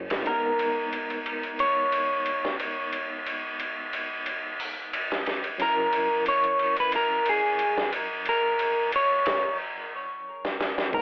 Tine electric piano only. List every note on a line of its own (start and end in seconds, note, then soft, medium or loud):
0.00 0.28 F#3 medium
0.00 0.28 C#4 medium
0.00 0.28 E4 medium
0.00 0.28 C#5 medium
0.23 5.54 G#3 medium
0.23 5.55 D#4 medium
0.23 5.56 A#4 medium
0.29 5.57 B3 medium
5.58 10.88 F#3 medium
5.58 10.89 C#4 medium
5.58 10.90 E4 medium
5.63 10.91 A#4 medium
10.92 11.02 G#3 medium
10.92 11.02 D#4 medium
10.92 11.02 A#4 medium
10.97 11.02 B3 medium